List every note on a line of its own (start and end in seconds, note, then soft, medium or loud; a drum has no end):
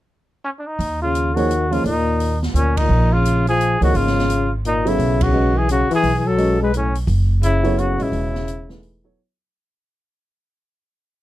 0.44 0.50 C#4 medium
0.59 0.68 D4 soft
0.67 1.01 D#4 medium
0.79 1.80 D#2 medium
0.79 open hi-hat soft
1.02 1.38 C#3 medium
1.02 1.37 F4 medium
1.15 closed hi-hat soft
1.35 1.72 D#3 medium
1.35 1.48 F3 medium
1.35 1.48 A#3 medium
1.35 1.49 D#4 medium
1.35 1.74 F#4 medium
1.35 1.49 G#4 medium
1.35 1.49 C#5 medium
1.35 open hi-hat soft
1.51 closed hi-hat soft
1.71 1.85 C#3 medium
1.71 1.83 F3 medium
1.71 1.84 A#3 medium
1.71 1.84 D#4 medium
1.71 1.85 F4 medium
1.71 1.84 G#4 medium
1.71 1.84 C#5 medium
1.71 open hi-hat soft
1.84 2.51 D#2 medium
1.84 2.38 A#2 medium
1.84 2.38 D#4 medium
1.84 open hi-hat soft
2.20 open hi-hat soft
2.43 snare soft
2.54 2.87 D2 medium
2.54 2.78 A#2 medium
2.54 2.78 C#4 medium
2.54 closed hi-hat soft
2.77 3.15 A#2 medium
2.77 3.14 D#4 medium
2.77 kick medium
2.77 ride medium
2.89 3.77 A#1 medium
3.13 3.47 C#3 medium
3.13 3.47 F4 medium
3.25 closed hi-hat medium
3.47 3.80 F3 medium
3.47 3.80 G#4 medium
3.47 open hi-hat soft
3.61 closed hi-hat soft
3.81 3.94 C#2 medium
3.81 3.98 D#3 medium
3.81 4.26 F3 medium
3.81 4.27 A#3 medium
3.81 4.27 D#4 medium
3.81 3.97 F#4 medium
3.81 4.27 G#4 medium
3.81 4.27 C#5 medium
3.81 open hi-hat soft
3.94 4.95 G#1 medium
3.94 4.52 C#3 medium
3.94 4.52 F4 medium
3.94 open hi-hat soft
4.07 snare soft
4.19 snare soft
4.30 closed hi-hat medium
4.65 4.88 A#2 medium
4.65 4.90 D#4 medium
4.65 closed hi-hat soft
4.85 5.23 C#3 medium
4.85 5.31 F#3 medium
4.85 5.31 B3 medium
4.85 5.31 E4 medium
4.85 5.24 E4 medium
4.85 5.31 A4 medium
4.85 5.31 C#5 medium
4.85 open hi-hat soft
4.98 5.86 B1 medium
4.98 open hi-hat soft
5.21 5.58 C#3 medium
5.21 5.59 F#4 medium
5.21 kick medium
5.21 ride medium
5.33 5.53 G#3 medium
5.33 5.53 C#4 medium
5.33 5.53 F#4 soft
5.33 5.53 B4 medium
5.33 5.53 D#5 medium
5.57 5.69 E3 medium
5.57 5.70 G#4 medium
5.69 5.89 C#3 medium
5.69 5.90 F#4 medium
5.69 closed hi-hat medium
5.89 6.15 E3 medium
5.89 muted upright bass stroke soft
5.89 open hi-hat soft
5.95 6.18 G#4 loud
6.03 7.03 B1 medium
6.03 open hi-hat soft
6.15 6.27 E3 medium
6.15 6.29 G#4 medium
6.26 6.60 F#3 medium
6.26 6.61 A4 medium
6.37 6.57 G#3 medium
6.37 6.57 C#4 medium
6.37 6.57 F#4 medium
6.37 6.58 B4 medium
6.37 6.57 D#5 medium
6.37 open hi-hat soft
6.62 6.73 G#3 medium
6.62 6.74 B4 medium
6.74 6.94 A2 medium
6.74 6.95 C#4 medium
6.74 closed hi-hat soft
6.95 open hi-hat soft
7.07 7.95 F#1 medium
7.07 open hi-hat soft
7.43 7.78 C#3 medium
7.43 7.80 E4 medium
7.43 closed hi-hat medium
7.64 7.97 F#3 medium
7.64 7.97 B3 medium
7.64 7.97 E4 medium
7.64 7.97 A4 medium
7.64 7.97 C#5 medium
7.64 open hi-hat soft
7.78 8.00 C#3 medium
7.78 8.04 F#4 medium
7.78 closed hi-hat soft
7.98 8.11 A1 medium
7.98 8.82 C#3 medium
7.98 8.44 G#3 medium
7.98 8.44 C#4 soft
7.98 8.44 F#4 medium
7.98 8.44 B4 soft
7.98 8.45 D#5 medium
7.98 open hi-hat soft
8.02 8.84 E4 medium
8.12 9.13 E1 medium
8.12 open hi-hat soft
8.35 snare soft
8.48 closed hi-hat soft
8.69 9.02 E3 medium
8.69 9.02 A3 medium
8.69 9.02 D#4 soft
8.69 9.02 G#4 medium
8.69 9.02 B4 medium
8.69 snare soft
8.83 open hi-hat soft
9.04 9.17 F#3 medium
9.04 9.17 B3 medium
9.04 9.17 E4 medium
9.04 9.17 A4 medium
9.04 9.17 C#5 medium